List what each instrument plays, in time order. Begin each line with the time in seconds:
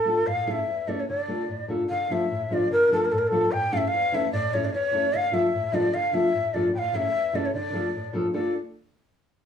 Already playing: nylon-string guitar A2, ney A4
0.05 nylon-string guitar A3 D4 F4 A4
0.26 nylon-string guitar A2, ney F5
0.46 nylon-string guitar A3 C#4 E4 A4, ney F5
0.51 ney E5
0.67 nylon-string guitar E2
0.87 nylon-string guitar A3 C#4 E4 A4, ney D5
1.00 ney C#5
1.08 nylon-string guitar D3, ney D5
1.28 nylon-string guitar A3 D4 F4 A4
1.49 nylon-string guitar A2
1.68 nylon-string guitar A3 D4 F4 A4
1.89 nylon-string guitar D3, ney F5
2.10 nylon-string guitar F3 A3 D4 F4 A4, ney E5
2.31 nylon-string guitar A2
2.50 nylon-string guitar F3 A3 D4 F4 A4, ney D5
2.70 nylon-string guitar D3, ney A#4
2.90 nylon-string guitar F3 A3 D4 F4 A4, ney A4
3.05 ney A#4
3.12 nylon-string guitar A2, ney A4
3.18 ney A#4
3.27 nylon-string guitar F3, ney A4
3.32 nylon-string guitar A3 D4 F4 A4
3.52 nylon-string guitar A2, ney G5
3.72 nylon-string guitar E3 A3 C#4 E4 A4, ney F5
3.78 ney E5
3.88 ney F5
3.93 nylon-string guitar E2
4.12 nylon-string guitar E3 A3 C#4 E4 A4, ney E5
4.33 nylon-string guitar A2, ney D5
4.53 nylon-string guitar E3 A3 C#4 E4 A4, ney C#5
4.65 ney D5
4.72 nylon-string guitar E2, ney C#5
4.91 nylon-string guitar E3 A3 C#4 E4 A4
5.14 nylon-string guitar D3, ney F5
5.32 nylon-string guitar F3 A3 D4 F4 A4, ney E5
5.54 nylon-string guitar A2
5.72 nylon-string guitar F3 A3 D4 F4 A4, ney D5
5.93 nylon-string guitar D3, ney F5
6.13 nylon-string guitar F3 A3 D4 F4 A4, ney E5
6.34 nylon-string guitar A2
6.54 nylon-string guitar F3 A3 D4 F4 A4, ney D5
6.74 nylon-string guitar A2, ney G5
6.79 ney F5
6.93 nylon-string guitar E3 A3 C#4 E4 A4, ney E5
7.15 nylon-string guitar E2
7.33 nylon-string guitar E3 A3 C#4 E4 A4, ney D5
7.46 ney C#5
7.54 nylon-string guitar D3, ney D5
7.73 nylon-string guitar F3 A3 D4 F4 A4
7.95 nylon-string guitar A2
8.13 nylon-string guitar F3 A3 D4 F4 A4
8.34 nylon-string guitar A3 D4 F4 A4, ney D5